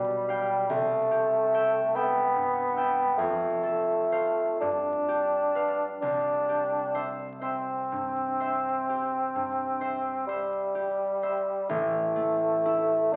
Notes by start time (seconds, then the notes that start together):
Already playing: B1 B2 G3 G4 F5 G5
0.29 F5 G5
0.69 C2 A3
1.11 G4
1.54 E5 G5
1.95 B3 E5 G5
2.35 G2
2.76 E5 G5
3.17 F2 A3
3.63 A4
4.12 C5 F5
4.60 G2 D4
5.08 G4
5.55 B4 F5
6.01 C2 D4
6.49 G4
6.95 C5 E5
7.41 C4 C5 E5
7.92 G2
8.40 C5 E5
8.89 G4
9.35 G2
9.81 C5 E5
10.27 G3 C5 E5
10.75 G4
11.23 C5 E5
11.69 A1 A3
12.16 A3
12.66 E4
13.13 D4